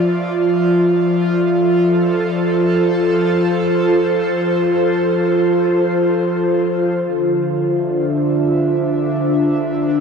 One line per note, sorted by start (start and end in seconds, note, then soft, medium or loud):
0.00 7.03 F3 medium
0.00 10.00 F4 medium
0.00 2.71 D5 medium
0.00 2.71 E5 medium
1.27 8.11 A4 medium
1.81 9.78 C5 medium
7.01 10.00 D3 medium
7.50 10.00 D4 medium
7.69 10.00 E5 medium